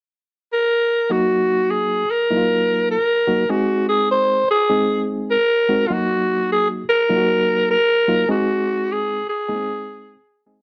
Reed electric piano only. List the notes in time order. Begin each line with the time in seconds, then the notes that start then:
1.10 F#3 A#3 D#4 F#4
2.31 F#3 A#3 D#4 E4
2.37 F4
3.27 F#3 A#3 D#4 F#4
3.49 G#3 C4 D#4 G#4
4.69 G#3 C4 D#4 G#4
5.69 G#3 C4 D#4 F#4
5.90 F#3 A#3 D#4 F#4
7.09 F#3 A#3 D#4 F4
7.17 F#4
8.08 F#3 A#3 D#4 F4
8.29 G#3 C4 D#4 G#4
9.49 G#3 A#3 D#4 G#4
9.55 C4
10.46 G#3 C4 D#4 G#4